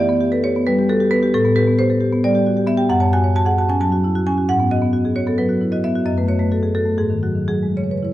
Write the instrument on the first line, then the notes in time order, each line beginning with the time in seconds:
marimba
Already playing: E3 G4 D5
0.09 B3
0.21 G4
0.32 A4 B4
0.43 G4 C#5
0.56 B3
0.67 G3 B4
0.79 G4
0.89 F#4 A4
1.00 G4
1.11 B3 B4
1.23 G4
1.34 A2 A4
1.45 B3
1.55 G4 B4
1.68 B3
1.78 G4 C5
1.90 A4
2.01 G4
2.13 B3
2.24 G3 D5
2.35 G4
2.46 F#4
2.57 G4
2.67 B3 E5
2.77 G4 G5
2.89 F#2 F#5
3.00 C#5 A5
3.13 F#4 G#5
3.24 C#5
3.36 F#4 A5
3.45 G#4 F#5
3.58 F#4 A5
3.69 C#4 G#5
3.80 F#3 A5
3.92 F#4
4.04 E4
4.15 F#4
4.27 C#4 G#5
4.38 F#4
4.49 G#2 F#5
4.60 B3
4.71 F#4 D#5
4.82 B3
4.93 F#4
5.05 G#4
5.16 F#4 C#5
5.27 B3 A4
5.38 F#3 B4
5.49 F#4
5.61 E4
5.72 F#4 D#5
5.84 B3 E5
5.95 F#4
6.06 F#2 D#5
6.18 A3 B4
6.28 F#4 C#5
6.39 A3 B4
6.51 F#4 A4
6.63 G#4
6.75 F#4 A4
6.85 A3
6.98 G#2 G#4
7.10 D#3
7.23 F#3 F#4
7.35 D#3
7.48 F#3 G#4
7.63 G#3
7.77 C#3 C#5
7.84 C#5
7.90 B4 C#5
7.98 C#5
8.03 E4 C#5